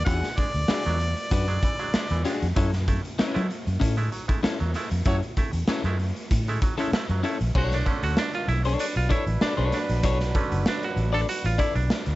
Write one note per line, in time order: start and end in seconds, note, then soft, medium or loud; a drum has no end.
0.05 0.21 E2 loud
0.05 0.20 E3 medium
0.05 0.27 D4 medium
0.05 0.27 F#4 medium
0.05 0.28 G#4 medium
0.05 0.39 F#5 loud
0.05 kick loud
0.05 closed hi-hat medium
0.23 snare soft
0.23 closed hi-hat soft
0.37 0.52 G#3 medium
0.37 0.52 D4 medium
0.37 1.32 D5 loud
0.37 kick medium
0.37 closed hi-hat medium
0.54 0.67 D2 medium
0.54 closed hi-hat medium
0.68 0.83 E3 medium
0.68 0.82 D4 medium
0.68 0.83 F#4 medium
0.68 0.83 G#4 medium
0.68 snare loud
0.85 1.13 E2 medium
0.85 0.98 F#3 medium
0.85 0.98 G#3 medium
0.85 0.98 D4 medium
0.85 closed hi-hat soft
0.99 closed hi-hat medium
1.17 closed hi-hat medium
1.31 1.58 F#2 medium
1.31 1.45 D4 medium
1.31 1.46 F#4 medium
1.31 1.46 B4 medium
1.31 2.22 D5 medium
1.31 kick loud
1.31 closed hi-hat loud
1.47 1.60 F#3 medium
1.47 1.60 G#3 medium
1.47 1.60 D4 medium
1.47 closed hi-hat soft
1.62 1.77 E3 medium
1.62 kick loud
1.62 closed hi-hat medium
1.79 1.91 F#3 medium
1.79 1.91 G#3 medium
1.79 1.92 D4 medium
1.79 closed hi-hat soft
1.93 2.07 G#3 medium
1.93 2.08 D4 medium
1.93 muted fingered electric bass stroke soft
1.93 snare loud
2.10 2.23 E2 loud
2.10 2.23 E3 medium
2.10 closed hi-hat medium
2.25 2.39 G#3 medium
2.25 2.46 D4 medium
2.25 2.39 D4 medium
2.25 2.46 F#4 medium
2.25 2.46 G#4 medium
2.25 snare soft
2.25 closed hi-hat medium
2.42 2.55 F2 medium
2.42 closed hi-hat medium
2.56 2.97 F#2 loud
2.56 2.70 F#3 medium
2.56 2.70 C#4 medium
2.56 2.70 E4 medium
2.56 2.71 A4 medium
2.56 kick loud
2.56 closed hi-hat loud
2.73 snare soft
2.73 closed hi-hat soft
2.88 3.01 A3 medium
2.88 3.02 E4 medium
2.88 kick medium
2.88 closed hi-hat medium
3.05 closed hi-hat soft
3.19 3.32 F#3 medium
3.19 3.39 C#4 medium
3.19 3.40 E4 medium
3.19 3.40 B4 medium
3.19 muted fingered electric bass stroke soft
3.19 snare loud
3.34 3.48 F#3 loud
3.34 3.47 G#3 medium
3.34 3.47 A3 medium
3.34 3.47 E4 medium
3.34 closed hi-hat medium
3.49 3.56 A3 soft
3.49 3.57 E4 soft
3.49 closed hi-hat medium
3.67 3.79 F#2 medium
3.67 closed hi-hat soft
3.80 4.08 A2 loud
3.80 3.94 C#4 medium
3.80 3.95 E4 medium
3.80 3.95 A4 medium
3.80 kick loud
3.80 closed hi-hat loud
3.97 4.09 G#3 medium
3.97 4.10 A3 medium
3.97 4.10 E4 medium
3.97 closed hi-hat soft
4.12 4.26 F#3 medium
4.12 closed hi-hat medium
4.28 4.41 G#3 medium
4.28 4.41 A3 medium
4.28 4.41 E4 medium
4.28 kick medium
4.28 closed hi-hat medium
4.43 4.50 A3 soft
4.43 4.57 C#4 medium
4.43 4.50 E4 soft
4.43 4.57 E4 medium
4.43 4.57 A4 loud
4.43 muted fingered electric bass stroke soft
4.43 snare loud
4.60 4.73 E2 medium
4.60 4.72 F#3 medium
4.60 closed hi-hat soft
4.74 4.89 G#3 medium
4.74 4.89 A3 medium
4.74 4.89 E4 medium
4.74 snare soft
4.74 closed hi-hat medium
4.91 5.04 F2 medium
4.91 closed hi-hat medium
5.05 5.20 F#2 loud
5.05 5.19 F#3 medium
5.05 5.16 A3 loud
5.05 5.20 C#4 medium
5.05 5.20 E4 medium
5.05 5.16 F#4 medium
5.05 5.20 A4 medium
5.05 5.16 C#5 loud
5.05 kick loud
5.05 closed hi-hat medium
5.22 closed hi-hat soft
5.37 5.51 A3 medium
5.37 5.51 E4 medium
5.37 kick medium
5.37 closed hi-hat medium
5.53 5.65 E2 medium
5.53 closed hi-hat medium
5.68 5.82 F#3 medium
5.68 5.82 C#4 loud
5.68 5.82 E4 medium
5.68 5.82 A4 loud
5.68 muted fingered electric bass stroke medium
5.68 snare loud
5.84 6.11 F#2 medium
5.84 5.97 G#3 medium
5.84 5.97 A3 medium
5.84 5.97 E4 medium
5.84 closed hi-hat soft
5.99 6.06 A3 soft
5.99 6.07 E4 soft
5.99 open hi-hat medium
6.16 closed hi-hat soft
6.31 6.57 A2 medium
6.31 kick loud
6.31 closed hi-hat loud
6.48 6.60 G#3 medium
6.48 6.60 A3 medium
6.48 6.60 E4 medium
6.48 closed hi-hat soft
6.62 6.76 F#3 medium
6.62 kick loud
6.62 closed hi-hat medium
6.78 6.91 G#3 medium
6.78 6.91 A3 medium
6.78 6.91 C#4 medium
6.78 6.90 E4 medium
6.78 6.91 E4 medium
6.78 6.90 A4 medium
6.78 closed hi-hat medium
6.92 7.07 A3 medium
6.92 7.07 E4 medium
6.92 muted fingered electric bass stroke medium
6.92 snare loud
7.09 7.22 F#2 medium
7.09 7.22 F#3 medium
7.09 closed hi-hat medium
7.23 7.38 A3 medium
7.23 7.37 C#4 medium
7.23 7.38 E4 medium
7.23 7.38 A4 medium
7.23 closed hi-hat medium
7.41 7.53 A#1 medium
7.41 closed hi-hat soft
7.55 7.81 B1 loud
7.55 7.76 D4 medium
7.55 7.73 F#4 loud
7.55 7.76 A4 medium
7.55 7.76 C#5 medium
7.55 kick loud
7.55 crash medium
7.71 8.05 D4 medium
7.71 snare soft
7.71 closed hi-hat soft
7.86 8.75 D3 medium
7.86 8.76 A3 soft
7.86 8.76 C#4 medium
7.86 kick medium
7.86 closed hi-hat medium
8.03 8.15 D2 medium
8.03 8.18 F#4 medium
8.03 closed hi-hat soft
8.17 8.35 D4 loud
8.17 snare loud
8.33 8.48 F4 medium
8.33 closed hi-hat soft
8.48 8.74 B1 loud
8.48 8.62 E4 medium
8.48 closed hi-hat medium
8.65 8.85 D4 medium
8.65 8.85 A4 medium
8.65 8.84 C#5 medium
8.65 closed hi-hat medium
8.79 12.15 F#3 medium
8.79 12.15 D4 medium
8.79 8.95 D4 medium
8.79 12.15 B4 medium
8.79 closed hi-hat loud
8.96 9.08 B1 medium
8.96 9.11 F4 medium
8.96 closed hi-hat soft
9.09 9.24 D4 medium
9.09 9.43 E4 medium
9.09 9.24 A4 loud
9.09 9.24 C#5 medium
9.09 kick loud
9.09 closed hi-hat medium
9.27 9.39 A1 medium
9.27 closed hi-hat soft
9.41 9.52 D4 medium
9.41 9.73 D4 medium
9.41 9.53 A4 medium
9.41 9.53 D5 medium
9.41 snare loud
9.57 9.70 B1 medium
9.57 9.78 D4 medium
9.57 9.77 A4 medium
9.57 9.77 C#5 medium
9.57 closed hi-hat soft
9.72 10.02 D4 medium
9.72 snare soft
9.72 closed hi-hat medium
9.89 10.04 A#1 medium
9.89 closed hi-hat medium
10.03 10.30 B1 loud
10.03 10.18 D4 medium
10.03 10.18 A4 medium
10.03 10.18 C#5 loud
10.03 kick loud
10.03 closed hi-hat medium
10.20 snare soft
10.20 closed hi-hat soft
10.34 11.25 D3 medium
10.34 11.25 A3 soft
10.34 11.25 C#4 medium
10.34 kick medium
10.34 closed hi-hat medium
10.52 10.64 F#1 medium
10.52 closed hi-hat medium
10.66 10.84 D4 medium
10.66 snare loud
10.83 11.16 F#4 medium
10.83 closed hi-hat medium
10.96 11.23 A1 medium
10.96 closed hi-hat medium
11.13 11.26 D4 medium
11.13 11.26 A4 medium
11.13 11.21 A4 loud
11.13 11.25 D5 medium
11.13 closed hi-hat medium
11.29 11.46 F#4 loud
11.29 closed hi-hat loud
11.44 11.57 A1 medium
11.44 11.60 F4 medium
11.44 closed hi-hat soft
11.58 11.73 D4 medium
11.58 11.77 E4 medium
11.58 11.73 A4 medium
11.58 11.73 D5 loud
11.58 kick loud
11.58 closed hi-hat medium
11.75 11.88 B1 medium
11.75 12.15 D4 medium
11.75 closed hi-hat medium
11.90 snare loud
12.06 12.15 D2 medium
12.06 closed hi-hat medium